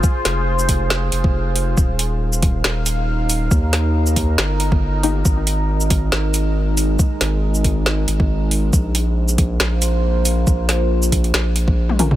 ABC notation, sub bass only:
X:1
M:4/4
L:1/8
Q:"Swing 16ths" 1/4=138
K:Ebmix
V:1 name="Sub bass" clef=bass
z F,,,4 F,,,3 | E,,,4 E,,,4 | E,,4 G,,,4 | A,,,4 A,,,4 |
z A,,,4 A,,,3 | B,,,4 B,,,4 | B,,,4 B,,,4 |]